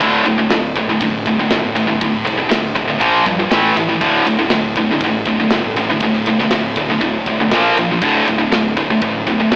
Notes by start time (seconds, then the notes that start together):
0.00 D1 D2 A2 D3, kick, ride
0.25 D1 D2 A2, ride
0.38 D2 A2
0.50 D1 D2 A2, snare, ride
0.76 D2 A2, kick, ride
0.89 D2 A2
1.01 A1 D2 A2, kick, ride
1.26 D1 D2 A2, kick, ride
1.39 D2 A2
1.51 G1 D2 A2, snare, ride
1.75 A1 D2 A2, ride
1.87 D2 A2
2.01 D1 D2 A2, kick, ride
2.25 C2 D2 A2, ride
2.38 D2 A2
2.49 D1 D2 A2, snare, ride
2.75 D1 D2 A2, kick, ride
2.88 D2 A2
3.00 A#1 A#2 F3 A#3, kick, ride
3.26 G2 A#2 F3, kick, ride
3.39 A#2 F3
3.51 A1 A2 E3 A3, snare, ride
3.76 A1 A2 E3, ride
3.89 A2 E3
4.01 D1 D2 A2 D3, kick, ride
4.26 D1 D2 A2, ride
4.39 D2 A2
4.50 D1 D2 A2, snare, ride
4.76 D2 A2, kick, ride
4.91 D2 A2
5.01 A1 D2 A2, kick, ride
5.25 D1 D2 A2, kick, ride
5.40 D2 A2
5.50 G1 D2 A2, snare, ride
5.75 A1 D2 A2, ride
5.90 D2 A2
6.00 D1 D2 A2, kick, ride
6.13 snare
6.26 C2 D2 A2, ride
6.39 D2 A2, snare
6.51 D1 D2 A2, snare, ride
6.76 D1 D2 A2, kick, ride
6.90 D2 A2
7.01 D1 D2 A2, kick, ride
7.26 C2 D2 A2, kick, ride
7.40 D2 A2
7.51 A#1 A#2 F3 A#3, snare, ride
7.77 A#1 A#2 F3, ride
7.91 A#2 F3
8.02 D1 D2 A2 D3, kick, ride
8.27 D1 D2 A2, ride
8.39 D2 A2
8.52 D1 D2 A2, snare, ride
8.77 D2 A2, kick, ride
8.90 D2 A2
9.02 A1 D2 A2, kick, ride
9.27 D1 D2 A2, kick, ride
9.40 D2 A2
9.52 G1 D2 A2, snare, ride